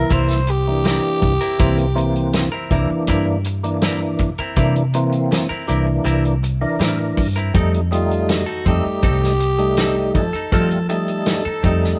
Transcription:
Already playing: tonewheel organ E3 A#3 E4, tenor saxophone A#4
0.10 fingered electric bass C2, clean electric guitar G3 C4 E4 A#4, tenor saxophone C5, kick, closed hi-hat
0.28 muted clean electric guitar stroke, snare, closed hi-hat
0.47 tenor saxophone G4, muted clean electric guitar stroke, closed hi-hat
0.67 tonewheel organ E3 A#3 D4
0.84 clean electric guitar G3 C4 E4 A#4, snare, closed hi-hat
1.03 muted clean electric guitar stroke
1.22 fingered electric bass C2, muted clean electric guitar stroke, kick, closed hi-hat
1.41 clean electric guitar C4 E4 A#4, closed hi-hat
1.59 fingered electric bass C2, tonewheel organ E3 A#3 C4, clean electric guitar G3 C4 E4 A#4, kick, closed hi-hat
1.78 muted clean electric guitar stroke, closed hi-hat
1.95 tonewheel organ E3 A#3 C4, muted clean electric guitar stroke, closed hi-hat
2.16 closed hi-hat
2.33 muted clean electric guitar stroke, snare, closed hi-hat
2.52 clean electric guitar C4 E4 A#4
2.71 fingered electric bass C2, tonewheel organ E3 A#3 D4, clean electric guitar G3 C4 E4 A#4, kick, closed hi-hat
2.90 muted clean electric guitar stroke, muted fingered electric bass stroke
3.07 fingered electric bass G2, clean electric guitar G3 C4 E4 A#4, kick, closed hi-hat
3.27 muted clean electric guitar stroke
3.44 muted clean electric guitar stroke, closed hi-hat
3.63 tonewheel organ E3 A#3 D4, closed hi-hat
3.82 clean electric guitar G3 C4 E4 A#4, snare, closed hi-hat
4.01 muted clean electric guitar stroke
4.19 fingered electric bass C3, muted clean electric guitar stroke, kick, closed hi-hat
4.38 clean electric guitar C4 E4 A#4, muted fingered electric bass stroke, closed hi-hat
4.56 fingered electric bass C3, tonewheel organ E3 A#3 D4, clean electric guitar G3 C4 E4 A#4, kick, closed hi-hat
4.76 muted clean electric guitar stroke, closed hi-hat
4.94 tonewheel organ E3 A#3 C4, muted clean electric guitar stroke, closed hi-hat
5.12 closed hi-hat
5.31 muted clean electric guitar stroke, snare, closed hi-hat
5.49 clean electric guitar C4 E4 A#4, muted fingered electric bass stroke
5.67 fingered electric bass C2, tonewheel organ E3 A#3 D4, clean electric guitar G3 C4 E4 A#4, closed hi-hat
5.87 muted clean electric guitar stroke
6.05 fingered electric bass C2, clean electric guitar G3 C4 E4 A#4, closed hi-hat
6.24 muted clean electric guitar stroke, closed hi-hat
6.43 muted clean electric guitar stroke, closed hi-hat
6.61 tonewheel organ E3 D4 A#4
6.80 fingered electric bass A2, clean electric guitar G3 C4 E4 A#4, snare, closed hi-hat
6.99 muted clean electric guitar stroke
7.17 fingered electric bass G2, muted clean electric guitar stroke, kick, open hi-hat
7.36 clean electric guitar C4 E4 A#4, closed hi-hat
7.54 fingered electric bass F2, tonewheel organ G3 A3 D#4, clean electric guitar C4 D#4 A4, kick, closed hi-hat
7.73 muted clean electric guitar stroke, closed hi-hat
7.91 tonewheel organ G3 A3 D#4, tenor saxophone F4, muted clean electric guitar stroke, closed hi-hat
8.11 closed hi-hat
8.29 tenor saxophone F#4, muted clean electric guitar stroke, snare, closed hi-hat
8.46 clean electric guitar D#4 A4
8.66 fingered electric bass F2, tonewheel organ G3 A3 D#4, clean electric guitar C4 D#4 A4, tenor saxophone G4, kick, closed hi-hat
8.85 muted clean electric guitar stroke, muted fingered electric bass stroke
9.03 fingered electric bass C2, clean electric guitar C4 D#4 A4, kick, closed hi-hat
9.21 muted clean electric guitar stroke, snare
9.40 muted clean electric guitar stroke, closed hi-hat
9.58 tonewheel organ G3 A3 D#4, closed hi-hat
9.77 clean electric guitar C4 D#4 A4, snare, closed hi-hat
9.96 muted clean electric guitar stroke
10.15 fingered electric bass F3, tenor saxophone A4, muted clean electric guitar stroke, kick, closed hi-hat
10.33 clean electric guitar D#4 A4, muted fingered electric bass stroke, closed hi-hat
10.52 fingered electric bass F3, tonewheel organ G3 A3 F4, clean electric guitar C4 D#4 A4, tenor saxophone A4, kick, closed hi-hat
10.71 muted clean electric guitar stroke, closed hi-hat
10.89 tonewheel organ G3 A3 D#4, tenor saxophone A4, muted clean electric guitar stroke, closed hi-hat
11.08 closed hi-hat
11.26 muted clean electric guitar stroke, snare, closed hi-hat
11.45 clean electric guitar D#4 A4, muted fingered electric bass stroke
11.63 fingered electric bass F2, tonewheel organ G3 A3 D#4, clean electric guitar C4 D#4 A4, kick, closed hi-hat
11.82 muted clean electric guitar stroke, snare

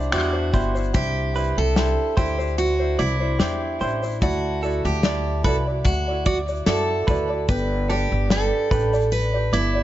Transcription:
Already playing: ukulele D4 E4 G4 C5, steel-string acoustic guitar D4, clean electric guitar D5
0.11 upright bass E2, ukulele D4 E4 G4 C5, steel-string acoustic guitar F#4, clean electric guitar D5, finger snap, shaker
0.33 ukulele D4 E4 C5
0.52 upright bass G1, ukulele D4 E4 G4 C5, clean electric guitar C5, kick, shaker
0.75 ukulele D4 E4 C5, shaker
0.93 upright bass C2, ukulele D4 E4 G4 C5, steel-string acoustic guitar G4, kick, shaker
1.34 ukulele D4 E4 G4 C5, clean electric guitar B4, shaker
1.58 upright bass C2, steel-string acoustic guitar A4
1.75 ukulele D4 E4 G4 C5, snare, shaker
2.17 upright bass D2, ukulele D4 E4 G4 C5, steel-string acoustic guitar G4, clean electric guitar C5, kick, shaker
2.38 ukulele D4 E4 C5, shaker
2.58 steel-string acoustic guitar F#4, shaker
2.79 ukulele D4 E4 C5
2.99 upright bass C2, steel-string acoustic guitar E4, clean electric guitar D5, shaker
3.20 ukulele D4 E4 C5
3.39 upright bass E2, ukulele D4 E4 G4 C5, clean electric guitar D5, snare, shaker
3.80 upright bass A1, ukulele D4 E4 G4 C5, clean electric guitar C5, shaker
4.02 ukulele D4 E4 C5, shaker
4.21 upright bass D2, ukulele E4 F#4 A4 D5, steel-string acoustic guitar F#4, kick, shaker
4.62 ukulele E4 F#4 A4 D5, clean electric guitar A4, shaker
4.85 upright bass D2, steel-string acoustic guitar G4, shaker
5.03 ukulele E4 A4 D5, snare, shaker
5.44 upright bass C2, ukulele E4 F#4 A4 D5, steel-string acoustic guitar A4, clean electric guitar B4, kick, shaker
5.67 ukulele E4 F#4 D5
5.84 upright bass D2, steel-string acoustic guitar F#4, kick, shaker
6.08 ukulele E4 F#4 D5
6.26 steel-string acoustic guitar F#4, clean electric guitar D5, kick, shaker
6.48 ukulele E4 F#4 D5, shaker
6.66 upright bass F#2, ukulele E4 F#4 A4 D5, steel-string acoustic guitar A4, clean electric guitar D5, snare, shaker
7.07 upright bass D2, ukulele E4 F#4 A4 D5, clean electric guitar B4, kick, shaker
7.30 ukulele E4 F#4 D5
7.48 upright bass G1, ukulele D4 G4 B4 D5, steel-string acoustic guitar B4, kick, shaker
7.89 ukulele D4 G4 B4 D5, steel-string acoustic guitar G4, clean electric guitar A4, shaker
8.12 upright bass G1
8.30 ukulele D4 G4 B4 D5, steel-string acoustic guitar A4, snare, shaker
8.70 upright bass A1, ukulele D4 G4 B4 D5, clean electric guitar B4, kick, shaker
8.93 ukulele D4 G4 D5, shaker
9.12 steel-string acoustic guitar B4, shaker
9.34 ukulele D4 G4 D5
9.53 upright bass G1, steel-string acoustic guitar E4, clean electric guitar D5, shaker
9.75 ukulele D4 G4 D5

